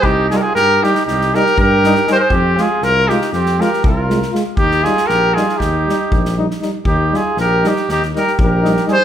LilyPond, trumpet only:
\new Staff \with { instrumentName = "Trumpet" } { \time 9/8 \key ees \major \tempo 4. = 79 g'8 aes'32 bes'32 aes'16 bes'8 g'8 g'8 bes'8 bes'4 c''32 bes'32 c''16 | g'8 aes'8 bes'8 g'8 g'8 bes'8 bes'4 r8 | g'8 aes'8 bes'8 aes'8 g'4. r4 | g'8 aes'8 bes'8 g'8 g'8 bes'8 bes'4 c''8 | }